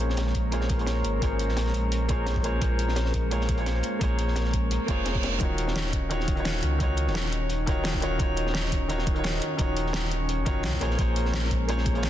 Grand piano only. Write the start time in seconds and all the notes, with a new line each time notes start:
Already playing: A#3 F4 G#4 C5 C#5
0.51 A#3 F4 G#4 C5 C#5
0.77 A#3 F4 G#4 C5
0.81 C#5
1.20 A#3 F4 G#4 C5
1.24 C#5
2.08 A#3 F4 G#4 C5 C#5
2.43 A#3 F4 G#4 C5 C#5
2.59 A#3 F4 G#4 C5
2.64 C#5
3.30 A#3 F4 G#4 C5 C#5
3.56 A#3 F4 G#4 C5
3.60 C#5
3.99 A#3 F4 G#4 C5
4.04 C#5
4.86 A#3 F4 G#4 C5
4.91 C#5
5.38 D#3 D#4 F4 F#4
5.43 C#5
6.09 D#3 D#4 F4 F#4 C#5
6.35 D#3 D#4 F4 F#4
6.40 C#5
6.78 D#3 D#4 F4 F#4
6.83 C#5
7.66 D#3 D#4 F4 F#4 C#5
8.01 D#3 D#4 F4 F#4 C#5
8.18 D#3 D#4 F4 F#4
8.22 C#5
8.88 D#3 D#4 F4 F#4 C#5
9.14 D#3 D#4 F4 F#4
9.19 C#5
9.57 D#3 D#4 F4 F#4
9.62 C#5
10.45 D#3 D#4 F4 F#4 C#5
10.80 A#3 F4 G#4 C5 C#5
10.97 A#3 F4 G#4 C5
11.01 C#5
11.67 A#3 F4 G#4 C5 C#5
11.93 A#3 F4 G#4 C5
11.98 C#5